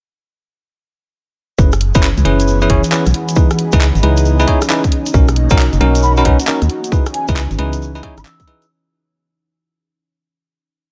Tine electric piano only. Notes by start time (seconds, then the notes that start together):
1.58 C#4 E4 G#4 B4
1.95 C#4 E4 G#4 B4
2.25 C#4 E4 G#4 B4
2.62 C#4 E4 G#4 B4
2.70 C#4 E4 G#4 C#5
2.92 C#4 E4 G#4 B4
3.36 D#4 E4 G#4 B4
3.73 D#4 E4 G#4 B4
4.03 D#4 E4 G#4 B4
4.40 D#4 E4 G#4 B4
4.47 D#4 E4 G#4 C#5
4.70 D#4 E4 G#4 B4
5.14 C#4 D#4 F#4 A#4
5.51 C#4 D#4 F#4 A#4
5.81 C#4 D#4 F#4 A#4
6.18 C#4 D#4 F#4 A#4
6.25 C#4 D#4 F#4 B4
6.48 C#4 D#4 F#4 A#4
6.92 D#4 E4 G#4 B4
7.29 D#4 E4 G#4 B4
7.59 D#4 E4 G#4 B4
7.95 D#4 E4 G#4 B4
8.03 D#4 E4 G#4 C#5
8.47 D#4 E4 G#4 B4